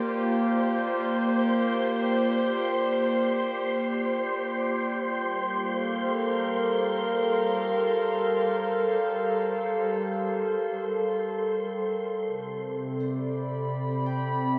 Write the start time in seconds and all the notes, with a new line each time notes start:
Already playing: A#3 F4 G4 C5 D5 C6
4.97 G3
5.53 A4 F5
5.81 A#4
12.27 C3
12.39 C4
12.72 D5
13.00 C5 B5
14.06 G5
14.16 E5